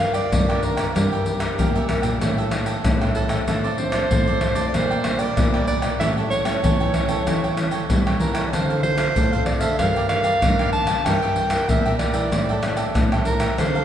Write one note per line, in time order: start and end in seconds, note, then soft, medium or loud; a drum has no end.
0.00 0.23 G2 medium
0.00 0.30 G3 medium
0.00 0.27 D4 soft
0.00 0.27 F4 soft
0.00 0.27 A#4 medium
0.00 0.14 F5 loud
0.13 0.46 A#4 medium
0.13 0.46 D5 medium
0.13 0.66 D5 medium
0.13 0.45 G5 medium
0.13 pandeiro medium
0.13 shaker medium
0.32 0.86 G2 medium
0.32 0.93 D3 medium
0.32 0.91 D4 medium
0.32 0.91 F4 medium
0.32 0.91 A#4 medium
0.32 pandeiro medium
0.32 tamborim medium
0.32 shaker medium
0.32 surdo loud
0.49 0.77 A#4 medium
0.49 0.76 D5 medium
0.49 0.75 G5 medium
0.49 pandeiro soft
0.49 tamborim medium
0.49 shaker soft
0.63 0.95 A#4 medium
0.63 pandeiro medium
0.63 shaker medium
0.76 0.94 A#4 soft
0.76 0.93 D5 medium
0.76 0.93 G5 medium
0.76 pandeiro medium
0.76 tamborim medium
0.76 shaker medium
0.76 surdo soft
0.95 1.49 G2 medium
0.95 1.56 G3 medium
0.95 1.10 D4 medium
0.95 1.38 D4 medium
0.95 1.38 E4 medium
0.95 2.18 G4 medium
0.95 1.10 A#4 medium
0.95 1.39 A#4 medium
0.95 1.10 E5 medium
0.95 1.11 G5 medium
0.95 pandeiro medium
0.95 tamborim medium
0.95 shaker medium
0.95 surdo medium
1.12 1.25 A#4 medium
1.12 1.25 E5 medium
1.12 1.25 G5 medium
1.12 pandeiro soft
1.12 shaker soft
1.26 muted cavaquinho stroke soft
1.26 pandeiro medium
1.26 shaker medium
1.39 1.84 D4 medium
1.39 1.84 E4 medium
1.39 1.57 A#4 medium
1.39 1.85 A#4 medium
1.39 1.56 E5 medium
1.39 1.56 G5 medium
1.39 pandeiro medium
1.39 tamborim medium
1.39 shaker medium
1.39 surdo soft
1.58 1.72 A#2 loud
1.58 2.19 G3 medium
1.58 1.73 D4 medium
1.58 1.73 A#4 medium
1.58 1.74 E5 medium
1.58 1.73 G5 medium
1.58 pandeiro medium
1.58 shaker medium
1.58 surdo medium
1.75 2.02 A#2 medium
1.75 2.03 A#4 medium
1.75 2.02 E5 medium
1.75 2.01 G5 medium
1.75 pandeiro soft
1.75 shaker soft
1.89 2.10 D4 medium
1.89 2.10 E4 soft
1.89 2.11 A#4 medium
1.89 pandeiro medium
1.89 tamborim medium
1.89 shaker medium
2.02 2.18 A#2 medium
2.02 2.20 A#4 medium
2.02 2.19 E5 medium
2.02 2.19 G5 medium
2.02 pandeiro medium
2.02 shaker medium
2.02 surdo soft
2.21 2.75 A2 medium
2.21 2.82 A2 medium
2.21 2.49 G3 medium
2.21 2.36 D4 soft
2.21 2.49 D4 medium
2.21 2.49 E4 medium
2.21 2.36 A4 medium
2.21 2.36 E5 medium
2.21 2.36 G5 medium
2.21 pandeiro medium
2.21 tamborim medium
2.21 shaker medium
2.21 surdo medium
2.37 2.51 A4 medium
2.37 2.51 E5 medium
2.37 2.51 G5 medium
2.37 pandeiro soft
2.37 shaker soft
2.37 surdo soft
2.51 2.71 G3 soft
2.51 2.72 D4 medium
2.51 2.72 E4 medium
2.51 muted cavaquinho stroke soft
2.51 pandeiro medium
2.51 tamborim medium
2.51 shaker medium
2.66 2.99 A4 medium
2.66 2.98 E5 medium
2.66 2.98 G5 medium
2.66 pandeiro medium
2.66 shaker medium
2.84 3.38 A2 medium
2.84 3.45 E3 medium
2.84 3.43 G3 medium
2.84 3.43 D4 medium
2.84 3.44 E4 medium
2.84 pandeiro medium
2.84 tamborim medium
2.84 shaker medium
2.84 surdo loud
3.01 3.30 A4 medium
3.01 3.29 E5 medium
3.01 3.28 G5 medium
3.01 pandeiro soft
3.01 tamborim medium
3.01 shaker soft
3.15 3.45 A4 medium
3.15 pandeiro medium
3.15 shaker medium
3.15 surdo soft
3.29 3.46 A4 soft
3.29 3.46 E5 medium
3.29 3.45 G5 medium
3.29 pandeiro medium
3.29 tamborim medium
3.29 shaker medium
3.29 surdo soft
3.47 4.01 A2 medium
3.47 4.08 A2 medium
3.47 3.67 F3 medium
3.47 3.67 C4 medium
3.47 3.67 D4 medium
3.47 3.62 F4 soft
3.47 3.80 A4 medium
3.47 3.63 A4 medium
3.47 3.63 C5 medium
3.47 3.63 D5 medium
3.47 pandeiro medium
3.47 tamborim medium
3.47 shaker medium
3.47 surdo medium
3.64 3.77 A4 medium
3.64 3.77 C5 medium
3.64 3.77 D5 medium
3.64 pandeiro soft
3.64 shaker soft
3.78 3.90 F3 medium
3.78 3.90 C4 medium
3.78 3.90 D4 medium
3.78 4.67 C5 loud
3.78 muted cavaquinho stroke soft
3.78 pandeiro medium
3.92 4.37 F3 medium
3.92 4.37 C4 medium
3.92 4.37 D4 medium
3.92 4.09 A4 medium
3.92 4.09 C5 medium
3.92 4.08 D5 medium
3.92 pandeiro medium
3.92 tamborim medium
3.92 shaker medium
3.92 surdo soft
4.10 4.24 A2 loud
4.10 4.71 A2 medium
4.10 4.25 F4 medium
4.10 4.26 A4 soft
4.10 4.26 C5 medium
4.10 4.26 D5 medium
4.10 pandeiro medium
4.10 shaker medium
4.10 surdo loud
4.27 4.54 A2 medium
4.27 4.56 A4 medium
4.27 4.55 C5 medium
4.27 4.54 D5 medium
4.27 pandeiro soft
4.27 shaker soft
4.41 4.62 F3 soft
4.41 4.63 C4 soft
4.41 4.63 D4 soft
4.41 pandeiro medium
4.41 tamborim medium
4.55 4.70 A2 medium
4.55 4.72 A4 soft
4.55 4.72 C5 medium
4.55 4.71 D5 medium
4.55 pandeiro medium
4.55 shaker medium
4.55 surdo soft
4.68 4.76 D5 medium
4.74 5.28 A#2 loud
4.74 5.34 A#2 medium
4.74 4.93 G3 medium
4.74 4.93 D4 medium
4.74 4.89 F4 soft
4.74 4.93 F4 medium
4.74 4.89 A#4 soft
4.74 5.20 C5 medium
4.74 4.89 D5 medium
4.74 4.89 G5 soft
4.74 pandeiro medium
4.74 tamborim medium
4.74 shaker medium
4.74 surdo medium
4.90 5.03 A#4 medium
4.90 5.04 D5 medium
4.90 5.04 G5 medium
4.90 pandeiro soft
4.90 shaker soft
4.90 surdo soft
5.04 5.32 G3 medium
5.04 5.32 D4 medium
5.04 5.32 F4 medium
5.04 muted cavaquinho stroke soft
5.04 pandeiro medium
5.04 tamborim medium
5.04 shaker medium
5.19 5.51 A#4 medium
5.19 5.67 D5 medium
5.19 5.51 D5 medium
5.19 5.50 G5 medium
5.19 pandeiro medium
5.19 shaker medium
5.37 5.97 A#2 medium
5.37 5.91 A#2 medium
5.37 5.78 G3 medium
5.37 5.78 D4 medium
5.37 5.79 F4 medium
5.37 pandeiro medium
5.37 tamborim medium
5.37 shaker medium
5.37 surdo loud
5.54 5.83 A#4 medium
5.54 5.82 D5 medium
5.54 5.81 G5 medium
5.54 pandeiro soft
5.54 tamborim medium
5.54 shaker soft
5.67 5.82 D5 medium
5.67 pandeiro medium
5.67 shaker medium
5.67 surdo soft
5.82 5.99 A#4 medium
5.82 5.98 D5 medium
5.82 5.98 G5 medium
5.82 pandeiro medium
5.82 tamborim medium
5.82 shaker medium
5.82 surdo soft
6.00 6.61 A2 medium
6.00 6.54 A2 medium
6.00 6.30 G3 medium
6.00 6.31 C#4 medium
6.00 6.31 E4 medium
6.00 6.15 G4 medium
6.00 6.15 A4 medium
6.00 6.16 C#5 medium
6.00 6.14 E5 medium
6.00 6.15 G5 medium
6.00 pandeiro medium
6.00 tamborim medium
6.00 shaker medium
6.00 surdo medium
6.17 6.30 A4 medium
6.17 6.30 C#5 medium
6.17 6.31 G5 medium
6.17 pandeiro soft
6.17 shaker soft
6.30 7.90 C#5 medium
6.30 muted cavaquinho stroke soft
6.30 pandeiro medium
6.30 shaker medium
6.45 6.89 G3 medium
6.45 6.89 C#4 medium
6.45 6.89 E4 medium
6.45 6.62 A4 medium
6.45 6.62 C#5 medium
6.45 6.61 G5 medium
6.45 pandeiro medium
6.45 tamborim medium
6.45 shaker medium
6.45 surdo soft
6.64 7.24 E3 medium
6.64 6.77 E3 loud
6.64 6.78 G4 soft
6.64 6.79 A4 medium
6.64 6.79 C#5 medium
6.64 6.79 G5 medium
6.64 pandeiro medium
6.64 shaker medium
6.64 surdo loud
6.80 7.07 E3 medium
6.80 7.09 A4 medium
6.80 7.08 C#5 medium
6.80 7.07 G5 medium
6.80 pandeiro soft
6.80 shaker soft
6.93 7.53 G3 soft
6.93 7.53 C#4 soft
6.93 7.53 E4 medium
6.93 pandeiro medium
6.93 tamborim medium
6.93 shaker medium
7.08 7.23 E3 medium
7.08 7.25 A4 medium
7.08 7.25 C#5 medium
7.08 7.24 G5 medium
7.08 pandeiro medium
7.08 shaker medium
7.08 surdo soft
7.26 7.87 A2 medium
7.26 7.80 E3 medium
7.26 7.42 G4 soft
7.26 7.42 A4 medium
7.26 7.42 C#5 medium
7.26 7.42 G5 medium
7.26 pandeiro medium
7.26 tamborim medium
7.26 shaker medium
7.26 surdo medium
7.44 7.56 A4 medium
7.44 7.57 C#5 medium
7.44 7.57 G5 medium
7.44 pandeiro soft
7.44 shaker soft
7.44 surdo soft
7.57 7.76 G3 soft
7.57 7.76 C#4 medium
7.57 7.77 E4 medium
7.57 muted cavaquinho stroke soft
7.57 pandeiro medium
7.57 tamborim medium
7.57 shaker medium
7.71 8.04 A4 medium
7.71 8.04 C#5 medium
7.71 8.03 G5 medium
7.71 pandeiro medium
7.71 shaker medium
7.90 8.50 E3 medium
7.90 8.18 G3 medium
7.90 8.31 G3 medium
7.90 8.31 C#4 medium
7.90 8.31 E4 medium
7.90 pandeiro medium
7.90 tamborim medium
7.90 shaker medium
7.90 surdo loud
8.06 8.35 A4 soft
8.06 8.34 C#5 medium
8.06 8.32 G5 medium
8.06 pandeiro soft
8.06 tamborim medium
8.06 shaker soft
8.20 8.49 E3 medium
8.20 8.48 A#4 medium
8.20 pandeiro medium
8.20 shaker medium
8.34 8.51 A4 medium
8.34 8.51 C#5 medium
8.34 8.50 G5 medium
8.34 pandeiro medium
8.34 tamborim medium
8.34 shaker medium
8.34 surdo soft
8.47 8.55 D5 medium
8.52 9.13 D3 medium
8.52 9.07 D3 medium
8.52 8.72 C4 medium
8.52 8.67 D4 soft
8.52 8.72 F4 medium
8.52 8.68 A4 medium
8.52 8.72 A4 medium
8.52 8.82 C5 medium
8.52 8.68 C5 medium
8.52 8.68 F5 medium
8.52 pandeiro medium
8.52 tamborim medium
8.52 shaker medium
8.52 surdo medium
8.69 8.82 A4 soft
8.69 8.82 C5 medium
8.69 8.83 F5 medium
8.69 pandeiro soft
8.69 shaker soft
8.83 8.95 C4 medium
8.83 8.95 F4 medium
8.83 8.95 A4 medium
8.83 9.43 C5 loud
8.83 muted cavaquinho stroke soft
8.83 pandeiro medium
8.97 9.42 C4 medium
8.97 9.42 F4 medium
8.97 9.42 A4 medium
8.97 9.14 A4 soft
8.97 9.14 C5 medium
8.97 9.13 F5 medium
8.97 pandeiro medium
8.97 tamborim medium
8.97 shaker medium
8.97 surdo soft
9.16 9.30 A2 medium
9.16 9.77 A2 medium
9.16 9.31 D4 medium
9.16 9.31 A4 medium
9.16 9.31 C5 medium
9.16 9.31 F5 medium
9.16 pandeiro medium
9.16 shaker medium
9.16 surdo loud
9.32 9.60 A2 medium
9.32 9.61 A4 medium
9.32 9.60 C5 medium
9.32 9.59 F5 medium
9.32 pandeiro soft
9.32 shaker soft
9.46 9.68 C4 medium
9.46 9.68 F4 soft
9.46 9.68 A4 medium
9.46 9.62 D5 medium
9.46 pandeiro medium
9.46 tamborim medium
9.60 9.76 D3 medium
9.60 9.78 A4 medium
9.60 9.77 C5 medium
9.60 9.78 E5 loud
9.60 9.77 F5 medium
9.60 pandeiro medium
9.60 shaker medium
9.60 surdo soft
9.79 10.33 G2 loud
9.79 10.40 G3 medium
9.79 10.06 D4 medium
9.79 9.94 F4 soft
9.79 10.06 F4 medium
9.79 9.94 A#4 soft
9.79 10.06 A#4 medium
9.79 9.95 D5 medium
9.79 10.08 F5 loud
9.79 9.95 G5 medium
9.79 pandeiro medium
9.79 tamborim medium
9.79 shaker medium
9.79 surdo medium
9.96 10.09 A#4 medium
9.96 10.09 D5 medium
9.96 10.10 G5 medium
9.96 pandeiro soft
9.96 shaker soft
9.96 surdo soft
10.09 10.37 D4 soft
10.09 10.37 F4 medium
10.09 10.37 A#4 medium
10.09 10.69 F5 loud
10.09 muted cavaquinho stroke soft
10.09 pandeiro medium
10.09 tamborim medium
10.09 shaker medium
10.24 10.57 A#4 medium
10.24 10.56 D5 medium
10.24 10.56 G5 medium
10.24 pandeiro medium
10.24 shaker medium
10.42 10.96 G2 medium
10.42 11.03 D3 medium
10.42 11.01 D4 medium
10.42 11.01 F4 medium
10.42 11.02 A#4 medium
10.42 pandeiro medium
10.42 tamborim medium
10.42 shaker medium
10.42 surdo loud
10.59 10.88 A#4 medium
10.59 10.87 D5 medium
10.59 10.86 G5 medium
10.59 pandeiro soft
10.59 tamborim medium
10.59 shaker soft
10.73 11.07 A5 loud
10.73 pandeiro medium
10.73 surdo soft
10.87 11.04 A#4 medium
10.87 11.04 D5 medium
10.87 11.03 G5 medium
10.87 pandeiro medium
10.87 tamborim medium
10.87 shaker medium
10.87 surdo soft
11.05 11.59 G2 medium
11.05 11.66 G3 medium
11.05 11.20 D4 medium
11.05 11.48 D4 medium
11.05 11.48 E4 medium
11.05 11.21 A#4 medium
11.05 11.49 A#4 medium
11.05 11.21 E5 medium
11.05 11.71 G5 medium
11.05 11.21 G5 medium
11.05 pandeiro medium
11.05 tamborim medium
11.05 shaker medium
11.05 surdo medium
11.22 11.35 A#4 medium
11.22 11.36 E5 medium
11.22 11.36 G5 medium
11.22 pandeiro soft
11.22 shaker soft
11.36 muted cavaquinho stroke soft
11.36 pandeiro medium
11.50 11.94 D4 medium
11.50 11.95 E4 medium
11.50 11.95 A#4 medium
11.50 11.67 A#4 medium
11.50 11.67 E5 medium
11.50 11.66 G5 medium
11.50 pandeiro medium
11.50 tamborim medium
11.50 shaker medium
11.50 surdo soft
11.69 11.82 A#2 medium
11.69 12.29 G3 medium
11.69 11.84 D4 medium
11.69 11.84 A#4 medium
11.69 11.98 E5 loud
11.69 11.84 E5 medium
11.69 11.84 G5 medium
11.69 pandeiro medium
11.69 shaker medium
11.69 surdo medium
11.86 12.12 A#2 medium
11.86 12.14 A#4 medium
11.86 12.13 E5 medium
11.86 12.12 G5 medium
11.86 pandeiro soft
11.86 shaker soft
11.99 12.29 D4 soft
11.99 12.29 E4 medium
11.99 12.29 A#4 medium
11.99 12.91 D5 medium
11.99 pandeiro medium
11.99 tamborim medium
12.13 12.28 E3 medium
12.13 12.31 A#4 medium
12.13 12.30 E5 medium
12.13 12.30 G5 medium
12.13 pandeiro medium
12.13 shaker medium
12.13 surdo soft
12.32 12.86 A2 medium
12.32 12.92 A2 medium
12.32 12.59 G3 medium
12.32 12.47 D4 soft
12.32 12.59 D4 medium
12.32 12.59 E4 medium
12.32 12.47 A4 soft
12.32 12.48 E5 soft
12.32 12.48 G5 medium
12.32 pandeiro medium
12.32 tamborim medium
12.32 shaker medium
12.32 surdo medium
12.49 12.62 A4 medium
12.49 12.62 E5 medium
12.49 12.63 G5 medium
12.49 pandeiro soft
12.49 shaker soft
12.49 surdo soft
12.63 12.82 G3 soft
12.63 12.82 D4 soft
12.63 12.82 E4 medium
12.63 muted cavaquinho stroke soft
12.63 pandeiro medium
12.63 tamborim medium
12.63 shaker medium
12.77 13.09 A4 medium
12.77 13.09 E5 medium
12.77 13.08 G5 medium
12.77 pandeiro medium
12.77 shaker medium
12.95 13.49 A2 medium
12.95 13.56 E3 medium
12.95 13.54 G3 medium
12.95 13.54 D4 medium
12.95 13.54 E4 medium
12.95 pandeiro medium
12.95 tamborim medium
12.95 shaker medium
12.95 surdo loud
13.12 13.41 A4 medium
13.12 13.40 E5 medium
13.12 13.39 G5 medium
13.12 pandeiro soft
13.12 tamborim medium
13.12 shaker soft
13.25 13.61 A#4 medium
13.25 pandeiro medium
13.25 shaker medium
13.40 13.57 A4 medium
13.40 13.56 E5 medium
13.40 13.56 G5 medium
13.40 pandeiro medium
13.40 tamborim medium
13.40 shaker medium
13.40 surdo soft
13.58 13.85 D3 medium
13.58 13.85 D3 loud
13.58 13.85 A3 medium
13.58 13.85 C4 medium
13.58 13.73 D4 medium
13.58 13.85 F4 medium
13.58 13.73 A4 medium
13.58 13.85 C5 loud
13.58 13.74 C5 medium
13.58 13.74 F5 medium
13.58 pandeiro medium
13.58 tamborim medium
13.58 shaker medium
13.58 surdo medium
13.75 13.85 A4 medium
13.75 13.85 C5 medium
13.75 13.85 F5 medium
13.75 pandeiro soft
13.75 shaker soft